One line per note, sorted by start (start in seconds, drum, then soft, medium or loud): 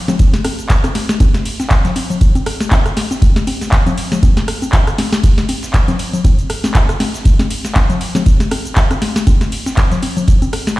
0.08 snare medium
0.08 closed hi-hat soft
0.08 high conga medium
0.08 low conga loud
0.08 shaker medium
0.19 kick loud
0.19 closed hi-hat medium
0.19 ride medium
0.19 shaker medium
0.34 snare medium
0.34 closed hi-hat soft
0.34 shaker soft
0.44 cross-stick medium
0.44 closed hi-hat medium
0.44 open hi-hat loud
0.44 ride medium
0.44 high conga medium
0.59 closed hi-hat soft
0.59 shaker medium
0.69 kick loud
0.69 snare loud
0.69 clap loud
0.69 closed hi-hat medium
0.69 ride medium
0.69 shaker medium
0.84 cross-stick medium
0.84 closed hi-hat soft
0.84 high conga medium
0.84 shaker soft
0.95 snare medium
0.95 closed hi-hat medium
0.95 open hi-hat loud
0.95 ride medium
1.09 snare medium
1.09 closed hi-hat soft
1.09 shaker medium
1.20 kick loud
1.20 closed hi-hat medium
1.20 ride medium
1.20 high conga medium
1.20 shaker medium
1.34 snare soft
1.34 snare medium
1.34 closed hi-hat soft
1.34 shaker soft
1.45 closed hi-hat medium
1.45 open hi-hat loud
1.45 ride medium
1.60 snare medium
1.60 closed hi-hat soft
1.60 high conga medium
1.60 shaker medium
1.70 kick loud
1.70 snare loud
1.70 clap loud
1.70 closed hi-hat medium
1.70 ride medium
1.70 shaker soft
1.85 snare medium
1.85 closed hi-hat soft
1.85 low conga medium
1.85 shaker soft
1.96 closed hi-hat medium
1.96 open hi-hat loud
1.96 ride medium
1.96 high conga medium
2.10 closed hi-hat soft
2.10 low conga medium
2.10 shaker medium
2.21 kick loud
2.21 closed hi-hat medium
2.21 ride medium
2.21 shaker medium
2.35 closed hi-hat soft
2.35 high conga medium
2.35 shaker soft
2.46 cross-stick medium
2.46 closed hi-hat medium
2.46 open hi-hat loud
2.46 ride medium
2.60 snare medium
2.60 closed hi-hat soft
2.60 shaker medium
2.71 kick loud
2.71 snare loud
2.71 clap loud
2.71 closed hi-hat medium
2.71 ride medium
2.71 high conga medium
2.71 shaker medium
2.86 cross-stick medium
2.86 closed hi-hat soft
2.86 shaker soft
2.97 snare medium
2.97 closed hi-hat medium
2.97 open hi-hat loud
2.97 ride medium
3.11 snare soft
3.11 closed hi-hat soft
3.11 high conga medium
3.11 shaker medium
3.22 kick loud
3.22 closed hi-hat medium
3.22 ride medium
3.22 shaker medium
3.36 snare medium
3.36 closed hi-hat soft
3.36 shaker soft
3.47 closed hi-hat medium
3.47 open hi-hat loud
3.47 ride medium
3.47 high conga medium
3.61 snare medium
3.61 snare soft
3.61 closed hi-hat soft
3.61 shaker medium
3.72 kick loud
3.72 snare loud
3.72 clap loud
3.72 closed hi-hat medium
3.72 ride medium
3.72 shaker medium
3.87 closed hi-hat soft
3.87 high conga medium
3.87 low conga medium
3.87 shaker soft
3.98 closed hi-hat medium
3.98 open hi-hat loud
3.98 ride medium
4.12 snare medium
4.12 closed hi-hat soft
4.12 low conga medium
4.12 shaker medium
4.23 kick loud
4.23 closed hi-hat medium
4.23 ride medium
4.23 high conga medium
4.23 shaker medium
4.37 snare medium
4.37 closed hi-hat soft
4.37 shaker soft
4.48 cross-stick medium
4.48 closed hi-hat medium
4.48 open hi-hat loud
4.48 ride medium
4.62 closed hi-hat soft
4.62 high conga medium
4.62 shaker medium
4.73 kick loud
4.73 snare loud
4.73 clap loud
4.73 closed hi-hat medium
4.73 ride medium
4.73 shaker medium
4.87 cross-stick medium
4.87 closed hi-hat soft
4.87 shaker soft
4.98 snare medium
4.98 closed hi-hat medium
4.98 open hi-hat loud
4.98 ride medium
4.98 high conga medium
5.12 snare medium
5.12 closed hi-hat soft
5.12 shaker medium
5.24 kick loud
5.24 closed hi-hat medium
5.24 ride medium
5.24 shaker medium
5.38 snare soft
5.38 snare medium
5.38 closed hi-hat soft
5.38 shaker soft
5.49 closed hi-hat medium
5.49 open hi-hat loud
5.49 ride medium
5.49 high conga medium
5.63 snare medium
5.63 closed hi-hat soft
5.63 shaker medium
5.74 kick loud
5.74 snare loud
5.74 clap loud
5.74 closed hi-hat medium
5.74 ride medium
5.74 shaker medium
5.88 snare soft
5.88 closed hi-hat soft
5.88 high conga medium
5.88 low conga medium
5.88 shaker soft
5.99 closed hi-hat medium
5.99 open hi-hat loud
5.99 ride medium
6.13 closed hi-hat soft
6.13 low conga medium
6.13 shaker medium
6.24 kick loud
6.24 closed hi-hat medium
6.24 ride medium
6.24 high conga medium
6.24 shaker medium
6.39 closed hi-hat soft
6.39 shaker soft
6.50 cross-stick medium
6.50 closed hi-hat medium
6.50 open hi-hat loud
6.50 ride medium
6.64 snare medium
6.64 high conga medium
6.64 shaker medium
6.75 kick loud
6.75 snare loud
6.75 clap loud
6.75 closed hi-hat medium
6.75 ride medium
6.75 shaker medium
6.89 cross-stick medium
6.89 closed hi-hat soft
6.89 shaker soft
7.00 snare medium
7.00 closed hi-hat medium
7.00 open hi-hat loud
7.00 ride medium
7.00 high conga medium
7.14 snare soft
7.14 closed hi-hat soft
7.14 shaker medium
7.25 kick loud
7.25 closed hi-hat medium
7.25 ride medium
7.25 shaker medium
7.39 snare medium
7.39 closed hi-hat soft
7.39 high conga medium
7.39 shaker soft
7.50 closed hi-hat medium
7.50 open hi-hat loud
7.50 ride medium
7.65 snare soft
7.65 snare medium
7.65 closed hi-hat soft
7.65 shaker medium
7.75 kick loud
7.75 snare loud
7.75 clap loud
7.75 closed hi-hat medium
7.75 ride medium
7.75 high conga medium
7.75 shaker medium
7.90 closed hi-hat soft
7.90 low conga medium
7.90 shaker soft
8.01 closed hi-hat medium
8.01 open hi-hat loud
8.01 ride medium
8.15 snare medium
8.15 closed hi-hat soft
8.15 high conga medium
8.15 low conga medium
8.15 shaker medium
8.26 kick loud
8.26 closed hi-hat medium
8.26 ride medium
8.26 shaker medium
8.40 snare medium
8.40 closed hi-hat soft
8.40 shaker soft
8.51 cross-stick medium
8.51 closed hi-hat medium
8.51 open hi-hat medium
8.51 ride medium
8.51 high conga medium
8.65 closed hi-hat soft
8.65 shaker medium
8.76 kick loud
8.76 snare loud
8.76 clap loud
8.76 closed hi-hat medium
8.76 ride medium
8.76 shaker medium
8.91 cross-stick medium
8.91 closed hi-hat soft
8.91 high conga medium
8.91 shaker soft
9.02 snare medium
9.02 closed hi-hat medium
9.02 open hi-hat loud
9.02 ride medium
9.16 snare medium
9.16 closed hi-hat soft
9.16 shaker medium
9.27 kick loud
9.27 closed hi-hat medium
9.27 ride medium
9.27 high conga medium
9.27 shaker medium
9.41 snare soft
9.41 snare medium
9.41 closed hi-hat soft
9.41 shaker soft
9.52 closed hi-hat medium
9.52 open hi-hat loud
9.52 ride medium
9.66 snare medium
9.66 closed hi-hat soft
9.66 high conga medium
9.66 shaker medium
9.77 kick loud
9.77 snare loud
9.77 clap loud
9.77 closed hi-hat medium
9.77 ride medium
9.77 shaker medium
9.91 snare medium
9.91 closed hi-hat soft
9.91 low conga medium
9.91 shaker soft
10.02 closed hi-hat medium
10.02 open hi-hat loud
10.02 ride medium
10.02 high conga medium
10.17 closed hi-hat soft
10.17 low conga loud
10.17 shaker medium
10.28 kick loud
10.28 closed hi-hat medium
10.28 ride medium
10.28 shaker medium
10.42 closed hi-hat soft
10.42 high conga medium
10.42 shaker soft
10.53 cross-stick medium
10.53 closed hi-hat medium
10.53 open hi-hat loud
10.53 ride medium
10.67 snare soft
10.67 snare medium
10.67 closed hi-hat soft
10.67 shaker medium